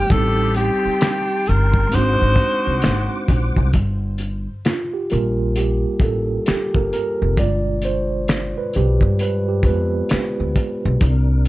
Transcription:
Already playing: tine electric piano G4, tenor saxophone G4, tonewheel organ G5
0.07 tine electric piano G3, horn section C4 D#4 G4, tonewheel organ A5 C6, kick, closed hi-hat
0.11 upright bass A1, tine electric piano C4 D#4, tenor saxophone A4
0.16 tine electric piano G4
0.54 tenor saxophone G4, closed hi-hat
0.85 muted upright bass stroke
1.01 finger snap, snare, closed hi-hat
1.46 upright bass G1, tenor saxophone A#4, closed hi-hat
1.74 kick
1.89 horn section F#3 D#4 F#4, tine electric piano G#3 C4, tonewheel organ C5 F#5 D6, closed hi-hat
1.93 upright bass G#1, tine electric piano D4 D#4, tenor saxophone C5
1.97 tine electric piano F#4
2.22 upright bass G#1
2.36 kick, closed hi-hat
2.67 upright bass C2
2.82 upright bass G#1, finger snap, snare, closed hi-hat
3.28 upright bass A#1, kick, closed hi-hat
3.56 upright bass C2, kick
3.73 upright bass G1, kick, closed hi-hat
4.18 closed hi-hat
4.65 tine electric piano F4, finger snap, snare, closed hi-hat
4.94 tine electric piano G4
5.10 upright bass A#1, tine electric piano G3 A#3 F4 A#4, closed hi-hat
5.56 tine electric piano G4, closed hi-hat
6.00 upright bass A1, tine electric piano A4, kick, closed hi-hat
6.46 tine electric piano G4, finger snap, muted upright bass stroke, snare, closed hi-hat
6.75 upright bass G1, tine electric piano A#4, kick
6.93 tine electric piano A#4, closed hi-hat
7.22 upright bass F1
7.37 upright bass G1, tine electric piano B2 G#3 F4 D5, kick, closed hi-hat
7.82 tine electric piano C5, closed hi-hat
8.28 finger snap, snare, closed hi-hat
8.58 tine electric piano B4
8.73 upright bass B1, tine electric piano G4, closed hi-hat
9.01 upright bass G2, kick
9.19 tine electric piano B4, closed hi-hat
9.48 tine electric piano G4
9.63 upright bass F2, tine electric piano G#3 B3 F4 B4, kick, closed hi-hat
10.09 finger snap, muted upright bass stroke, snare, closed hi-hat
10.40 upright bass D2
10.56 kick, closed hi-hat
10.85 upright bass B1
11.01 upright bass C2, tonewheel organ C3 D4 A#4, kick, closed hi-hat

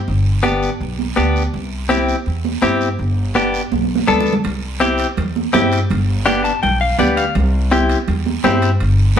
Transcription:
0.08 upright bass G1, long guiro
0.43 clean electric guitar B3 D4 G4, high conga, short guiro
0.63 short guiro
0.80 upright bass B1, long guiro
0.99 high conga
1.16 upright bass D2, clean electric guitar B3 D4 G4, high conga, short guiro
1.36 short guiro
1.53 upright bass C2, long guiro
1.89 clean electric guitar C4 E4 G4, high conga, short guiro
2.08 short guiro
2.26 upright bass E2, long guiro
2.45 high conga
2.62 upright bass G2, clean electric guitar C4 E4 G4, high conga, short guiro
2.81 short guiro
2.99 upright bass G1, long guiro
3.35 clean electric guitar B3 D4 G4, high conga, short guiro
3.54 short guiro
3.72 upright bass B1, high conga, long guiro
3.83 high conga
3.95 high conga
4.07 upright bass D2, clean electric guitar B3 D4 A4, low conga, short guiro
4.21 low conga
4.26 short guiro
4.33 low conga
4.44 upright bass C2, low conga, high timbale, long guiro
4.80 clean electric guitar C4 E4 G4, high conga, high timbale, short guiro
4.98 high timbale, short guiro
5.17 upright bass E2, low conga, high timbale, long guiro
5.36 high conga
5.53 upright bass G2, clean electric guitar C4 E4 G4, high conga, low conga, high timbale, low timbale, short guiro
5.72 high timbale, short guiro
5.90 upright bass G1, low conga, high timbale, long guiro
6.26 clean electric guitar B3 D4 G4, high conga, high timbale, short guiro
6.44 clean electric guitar A5, high timbale, short guiro
6.63 upright bass B1, clean electric guitar G5, low conga, high timbale, long guiro
6.81 clean electric guitar F5
6.99 upright bass D2, clean electric guitar B3 D4 G4 D5, high conga, low conga, high timbale, short guiro
7.17 clean electric guitar F5, high timbale, short guiro
7.35 upright bass C2, low conga, high timbale, long guiro
7.71 clean electric guitar C4 E4 G4, high conga, high timbale, short guiro
7.89 high timbale, short guiro
8.08 upright bass E2, low conga, high timbale, long guiro
8.26 high conga
8.44 upright bass G2, clean electric guitar C4 E4 G4, high conga, low conga, high timbale, low timbale, short guiro
8.62 high timbale, short guiro
8.80 upright bass G1, high timbale, long guiro
9.16 high conga

